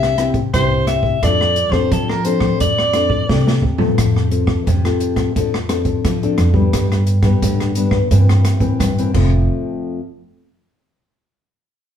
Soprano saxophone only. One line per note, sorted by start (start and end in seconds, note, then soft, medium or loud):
0.00 0.26 E5 loud
0.54 0.86 C5 medium
0.87 1.25 E5 medium
1.24 1.73 D5 loud
1.72 1.93 C5 medium
1.92 2.11 A4 medium
2.09 2.26 A#4 medium
2.25 2.60 C5 medium
2.60 3.60 D5 medium